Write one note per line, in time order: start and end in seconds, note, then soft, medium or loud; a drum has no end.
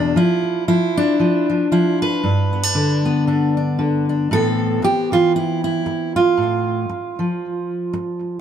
0.00 0.16 E2 medium
0.00 0.14 B2 medium
0.00 0.14 E3 medium
0.00 0.14 B3 soft
0.00 0.17 D4 medium
0.00 0.17 G#4 medium
0.16 0.67 F3 medium
0.16 0.67 E4 medium
0.68 1.18 F3 medium
0.68 1.49 E4 medium
0.97 2.24 D4 medium
1.20 1.48 F3 medium
1.50 1.71 F3 soft
1.72 2.21 F3 medium
1.72 2.01 E4 medium
2.02 4.32 B4 loud
2.23 4.28 G2 medium
2.53 2.63 B3 soft
2.63 3.27 D4 soft
2.75 3.26 D3 medium
3.05 4.29 B3 soft
3.27 3.77 D3 medium
3.27 3.56 D4 soft
3.57 4.08 D4 soft
3.79 4.31 D3 medium
4.09 4.29 D4 soft
4.31 4.82 A2 medium
4.31 5.11 E3 soft
4.31 6.37 B3 soft
4.31 7.83 C4 soft
4.31 4.84 A4 loud
4.82 5.13 G4 medium
4.82 muted steel-string acoustic guitar stroke medium
5.12 6.36 E3 medium
5.12 5.35 F4 medium
5.64 6.16 E4 medium
5.86 muted steel-string acoustic guitar stroke medium
6.16 8.38 F4 medium
6.37 6.88 A2 medium
6.89 muted steel-string acoustic guitar stroke medium
7.19 8.40 F3 medium
7.93 muted steel-string acoustic guitar stroke medium